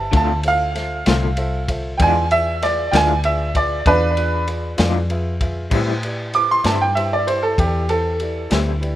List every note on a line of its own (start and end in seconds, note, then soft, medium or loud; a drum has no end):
0.00 0.10 G1 medium
0.00 0.14 A5 medium
0.12 1.04 D2 medium
0.12 0.31 D3 medium
0.12 0.31 A3 medium
0.12 0.32 C4 medium
0.12 0.36 F4 medium
0.12 0.32 F4 medium
0.12 0.36 A4 medium
0.12 0.36 C5 medium
0.12 0.36 E5 medium
0.12 kick loud
0.12 ride medium
0.17 0.45 A5 medium
0.43 0.67 F4 medium
0.43 0.68 A4 medium
0.43 0.68 C5 soft
0.43 0.68 E5 medium
0.43 ride medium
0.48 1.66 F5 loud
0.75 0.98 F4 medium
0.75 0.98 A4 medium
0.75 0.99 C5 medium
0.75 0.99 E5 medium
0.75 snare soft
0.75 ride medium
1.05 1.97 C2 medium
1.05 1.26 D3 medium
1.05 1.26 A3 medium
1.05 1.25 C4 medium
1.05 1.29 F4 medium
1.05 1.25 F4 medium
1.05 1.29 A4 medium
1.05 1.29 C5 medium
1.05 1.30 E5 medium
1.05 snare loud
1.05 ride medium
1.37 1.60 F4 medium
1.37 1.61 A4 medium
1.37 1.61 C5 medium
1.37 1.61 E5 medium
1.37 ride medium
1.68 1.91 F4 medium
1.68 1.92 A4 medium
1.68 1.92 C5 medium
1.68 1.92 E5 medium
1.68 kick medium
1.68 ride medium
1.98 2.90 E2 medium
1.98 2.18 E3 medium
1.98 2.18 G#3 medium
1.98 2.19 D4 medium
1.98 2.22 F4 medium
1.98 2.23 G#4 medium
1.98 2.22 B4 medium
1.98 2.23 D5 medium
1.98 2.01 G5 medium
1.98 kick loud
1.98 ride medium
2.02 2.19 F4 medium
2.02 2.31 G#5 loud
2.31 2.54 F4 medium
2.31 2.54 G#4 soft
2.31 2.54 B4 medium
2.31 2.54 D5 medium
2.31 2.61 E5 loud
2.31 ride medium
2.61 2.85 F4 medium
2.61 2.85 G#4 medium
2.61 2.85 B4 medium
2.61 2.85 D5 medium
2.61 2.92 D5 medium
2.61 snare soft
2.61 ride medium
2.91 3.83 D2 loud
2.91 3.12 E3 medium
2.91 3.12 G#3 medium
2.91 3.11 D4 medium
2.91 3.11 F4 medium
2.91 3.16 F4 medium
2.91 3.16 G#4 soft
2.91 3.17 B4 medium
2.91 3.17 E5 medium
2.91 2.95 G5 medium
2.91 3.24 G#5 loud
2.91 snare loud
2.91 ride medium
3.24 3.47 F4 medium
3.24 3.47 G#4 medium
3.24 3.47 B4 medium
3.24 3.47 D5 medium
3.24 3.54 E5 medium
3.24 ride medium
3.54 3.78 F4 medium
3.54 3.78 G#4 medium
3.54 3.78 B4 medium
3.54 3.78 D5 medium
3.54 3.86 D5 medium
3.54 kick medium
3.54 ride medium
3.85 4.76 E2 medium
3.85 4.44 D4 medium
3.85 4.09 F4 medium
3.85 4.09 G#4 soft
3.85 4.09 B4 medium
3.85 4.47 B4 loud
3.85 4.09 F5 medium
3.85 kick loud
3.85 ride medium
4.17 4.40 F4 medium
4.17 4.40 G#4 medium
4.17 4.41 B4 medium
4.17 4.41 D5 medium
4.17 ride medium
4.47 4.71 F4 medium
4.47 4.71 G#4 medium
4.47 4.71 B4 medium
4.47 4.71 D5 medium
4.47 ride medium
4.77 5.69 F2 loud
4.77 4.98 E3 medium
4.77 4.98 G#3 medium
4.77 4.98 D4 medium
4.77 5.01 F4 medium
4.77 4.97 F4 medium
4.77 5.01 G#4 medium
4.77 5.02 B4 medium
4.77 5.02 D5 medium
4.77 snare loud
4.77 ride medium
5.10 5.33 F4 medium
5.10 5.33 G#4 medium
5.10 5.33 B4 medium
5.10 5.34 E5 medium
5.10 ride medium
5.40 5.64 F4 medium
5.40 5.64 G#4 medium
5.40 5.64 B4 medium
5.40 5.65 E5 medium
5.40 kick medium
5.40 ride medium
5.70 5.90 A2 medium
5.70 6.62 A2 medium
5.70 5.90 G3 medium
5.70 5.90 C4 medium
5.70 5.95 E4 medium
5.70 5.90 E4 medium
5.70 5.95 G4 medium
5.70 5.96 B4 medium
5.70 5.96 C5 medium
5.70 kick loud
5.70 crash loud
6.03 6.26 E4 medium
6.03 6.27 G4 medium
6.03 6.27 B4 medium
6.03 6.27 D5 medium
6.03 ride medium
6.33 6.57 E4 medium
6.33 6.57 G4 soft
6.33 6.57 B4 medium
6.33 6.57 C5 medium
6.33 6.49 D6 loud
6.33 ride medium
6.51 6.65 C6 medium
6.64 7.55 G2 medium
6.64 6.84 A2 soft
6.64 6.83 G3 medium
6.64 6.83 C4 medium
6.64 6.83 E4 medium
6.64 6.88 E4 medium
6.64 6.88 G4 soft
6.64 6.88 B4 soft
6.64 6.88 C5 medium
6.64 6.80 A5 medium
6.64 snare loud
6.64 ride medium
6.81 6.95 G5 medium
6.95 7.19 E4 medium
6.95 7.19 G4 medium
6.95 7.20 B4 medium
6.95 7.19 C5 medium
6.95 7.10 E5 medium
6.95 ride medium
7.13 7.27 D5 medium
7.26 7.50 E4 medium
7.26 7.50 G4 soft
7.26 7.50 B4 medium
7.26 7.42 C5 medium
7.26 7.50 D5 medium
7.26 ride medium
7.43 7.57 A4 medium
7.58 8.48 E2 medium
7.58 7.81 E4 medium
7.58 7.81 G4 medium
7.58 7.88 G4 medium
7.58 7.81 B4 medium
7.58 7.82 D5 medium
7.58 kick medium
7.58 ride medium
7.88 8.12 E4 medium
7.88 8.12 G4 soft
7.88 8.49 A4 medium
7.88 8.13 B4 medium
7.88 8.13 C5 medium
7.88 ride medium
8.20 8.43 E4 medium
8.20 8.43 G4 soft
8.20 8.44 B4 soft
8.20 8.44 D5 medium
8.20 ride medium
8.50 8.96 D2 medium
8.50 8.70 A2 medium
8.50 8.70 G3 medium
8.50 8.70 C4 medium
8.50 8.74 E4 medium
8.50 8.69 E4 medium
8.50 8.74 G4 soft
8.50 8.74 B4 soft
8.50 8.74 C5 medium
8.50 snare loud
8.50 ride medium
8.81 8.96 E4 medium
8.81 8.96 G4 medium
8.81 8.96 B4 medium
8.81 8.96 D5 medium
8.81 ride soft